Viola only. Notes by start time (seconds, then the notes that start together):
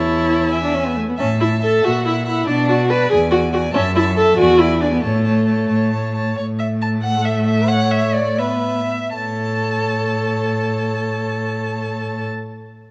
Already playing: E4
0.64 D4
0.74 C#4
0.86 B3
0.97 A3
1.09 B3
1.20 C#4
1.41 E4
1.63 A4
1.85 F#4
2.06 E4
2.27 E4
2.47 D4
2.69 F#4
2.90 B4
3.10 G#4
3.31 F#4
3.53 F#4
3.74 C#4
3.96 E4
4.17 A4
4.38 F#4
4.60 E4
4.81 D4
4.94 B3
5.02 A3
6.37 A3
8.38 B3
9.15 A4